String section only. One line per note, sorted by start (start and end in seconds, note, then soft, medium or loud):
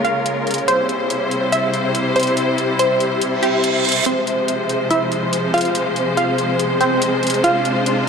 0.00 0.65 C#3 medium
0.00 0.64 G#3 medium
0.00 0.65 F4 medium
0.00 0.65 A#4 medium
0.68 4.03 C3 medium
0.68 4.03 G3 medium
0.68 4.03 E4 medium
0.68 4.03 C5 medium
4.06 8.09 C3 medium
4.06 7.41 F3 medium
4.06 8.09 G#3 medium
4.06 8.09 C5 medium
7.44 8.09 F4 medium